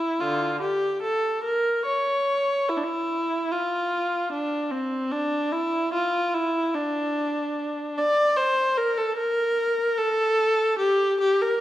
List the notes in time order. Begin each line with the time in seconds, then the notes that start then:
Already playing: E4
0.20 D3 F4
0.61 G4
1.02 A4
1.44 A#4
1.86 C#5
2.69 E4
2.77 D4
2.84 E4
3.51 F4
4.32 D4
4.71 C4
5.12 D4
5.52 E4
5.94 F4
6.34 E4
6.75 D4
7.98 D5
8.37 C5
8.77 A#4
8.97 A4
9.17 A#4
9.98 A4
10.78 G4
11.20 G4
11.41 A#4